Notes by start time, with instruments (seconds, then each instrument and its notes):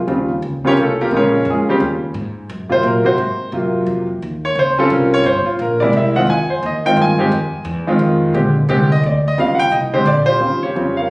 0.07 upright bass D#2, grand piano C#3 G3 C4 F4
0.42 upright bass C#2
0.64 grand piano C#3 G3 C4 C#4 F4 G4 A#4 C#5
0.77 upright bass C2
0.82 grand piano A3 A4
1.01 grand piano A#3 F4 G4 A#4
1.11 upright bass A#1, grand piano C#3 G#3 A#3 F4
1.16 grand piano C#4 G#4 A#4 C#5
1.45 upright bass F2
1.50 grand piano G#3 C#4 F4 G#4
1.69 grand piano C#3 G3 C4 G4
1.80 upright bass D#2
2.14 upright bass G#2
2.49 upright bass F#2
2.69 grand piano C3 F#3 A#3 F4 C5
2.83 upright bass A#2, grand piano A#4
3.05 grand piano C3 F#3 A#3 F#4 C5, muted upright bass stroke
3.18 upright bass G#2
3.52 upright bass F#2, grand piano C3 F#3 A#3 F4
3.86 upright bass F2
4.22 upright bass D#2
4.45 grand piano C#5
4.55 upright bass C#2, grand piano C5
4.79 grand piano G3 C4 C#4 F4 A4
4.90 upright bass C2, grand piano A#4
5.14 grand piano C#5
5.24 upright bass G1, grand piano C5
5.46 grand piano F4, muted upright bass stroke
5.59 upright bass A#1, grand piano A#4
5.80 grand piano C3 G#3 A#3 E4 D5
5.93 upright bass C2, grand piano E5
6.16 grand piano D#3 G#3 C4 F4 F#5
6.27 upright bass F2, grand piano G#5
6.50 grand piano C5
6.63 upright bass D#2, grand piano D#5
6.85 grand piano D#3 G#3 C4 F4 G5
6.97 upright bass G2
7.02 grand piano G#5
7.18 grand piano D#3 G#3 C4 G4
7.32 upright bass F2
7.65 upright bass E2
7.87 grand piano D#3 G#3 C4 F4
7.99 upright bass F2
8.34 upright bass A#1, grand piano D3 G#3 C4 G4
8.69 upright bass C2, grand piano D3 G#3 C4 G4
8.92 grand piano D#5
9.03 upright bass D2, grand piano D5
9.28 grand piano D#5
9.38 upright bass D#2, grand piano C#3 G3 C4 F4 F5
9.55 grand piano F#5
9.59 grand piano G5
9.72 upright bass C2, grand piano D#5
9.94 grand piano D3 G#3 C4 G4 C5
10.06 upright bass A#1, grand piano D5
10.26 grand piano F4 G4 C5
10.40 upright bass D#2, grand piano C#3 G3 C4 F4
10.63 grand piano F4 G4 C#5
10.75 upright bass F2, grand piano C#3 G3 C4 F4
10.97 grand piano A#4 C#5 F5